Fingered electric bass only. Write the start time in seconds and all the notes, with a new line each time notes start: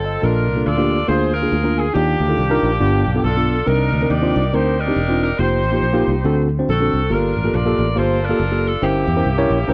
Already playing: G1
0.23 A#1
0.48 C2
0.66 D2
1.08 D2
1.52 D2
1.95 D#2
2.20 D2
2.38 C2
2.63 A#1
2.81 G1
3.06 B1
3.24 B1
3.67 C2
3.93 D2
4.10 D#2
4.36 C2
4.54 D2
4.96 E1
5.39 F1
5.65 A1
5.83 A#1
6.08 C2
6.25 D2
6.69 A#1
6.93 C2
7.11 G1
7.37 A1
7.54 A#1
7.79 A1
7.97 G1
8.40 F#1
8.82 G1
9.07 E2
9.25 C2
9.50 A#1
9.68 C#2